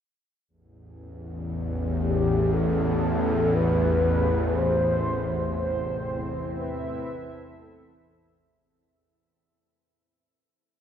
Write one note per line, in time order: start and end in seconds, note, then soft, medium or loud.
0.48 8.73 A1 medium
0.48 8.72 E2 medium
2.01 2.54 G4 medium
2.52 3.56 A4 medium
3.54 4.57 B4 loud
4.55 8.62 C4 medium
4.55 5.57 C5 loud
5.49 8.61 E4 medium
5.57 6.60 C5 medium
5.57 8.62 E5 medium
6.37 8.62 A4 medium
6.58 7.60 B4 loud
7.60 8.33 A4 medium